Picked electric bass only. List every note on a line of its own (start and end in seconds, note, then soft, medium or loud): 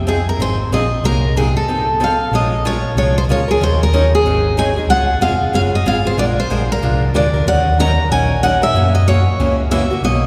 0.00 0.26 F2 medium
0.39 0.66 G#1 medium
0.71 0.98 A#1 medium
1.03 1.55 C2 medium
2.31 2.83 A#1 medium
2.95 3.23 C2 medium
3.28 3.55 C#2 medium
3.61 4.12 D#2 medium
4.24 4.76 G#1 medium
4.87 5.14 C#2 medium
5.21 5.48 F1 medium
5.53 5.81 F#1 medium
5.85 6.13 G#1 medium
6.17 6.43 A#1 medium
6.50 6.77 A#1 medium
6.82 7.10 C2 medium
7.14 7.42 D2 medium
7.46 7.98 D#2 medium
8.10 8.62 A#1 medium
8.74 9.26 F#2 medium
9.39 9.90 C#2 medium
10.02 10.27 B1 medium